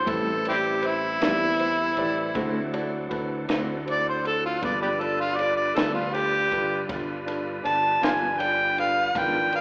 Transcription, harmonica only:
0.00 0.12 C5 medium
0.10 0.46 A4 medium
0.49 0.56 C4 medium
0.49 0.58 E4 medium
0.49 0.88 G4 medium
0.86 3.08 E4 loud
3.91 4.07 D5 medium
4.09 4.25 C5 medium
4.27 4.43 A4 medium
4.45 4.62 F4 medium
4.65 4.81 D5 medium
4.82 4.88 G4 soft
4.82 4.90 B4 soft
4.82 5.03 D5 medium
5.01 5.18 A4 medium
5.20 5.39 F4 medium
5.38 5.55 D5 medium
5.57 5.77 D5 medium
5.76 5.93 A4 medium
5.94 6.15 F4 medium
6.14 6.87 G4 loud
7.65 8.02 A5 medium
8.04 8.10 C5 soft
8.04 8.11 F5 soft
8.04 8.42 G#5 medium
8.40 8.77 G5 medium
8.80 9.20 F5 medium
9.19 9.53 G5 medium
9.56 9.61 F5 medium

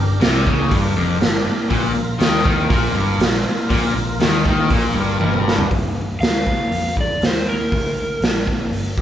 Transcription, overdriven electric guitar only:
0.00 0.17 G2 medium
0.21 0.46 C3 loud
0.47 0.71 C#3 loud
0.71 0.96 G2 loud
0.96 1.20 F2 loud
1.21 1.41 G2 medium
1.70 1.93 A#2 loud
1.95 2.16 A#2 medium
2.20 2.43 D#3 loud
2.44 2.69 D#3 loud
2.70 2.95 A#2 loud
2.95 3.20 G2 loud
3.20 3.41 A#2 medium
3.71 3.95 A#2 loud
3.96 4.16 A#2 medium
4.21 4.45 D#3 medium
4.46 4.71 D#3 loud
4.72 4.96 A#2 loud
4.95 5.19 G2 loud
5.20 5.70 G2 loud

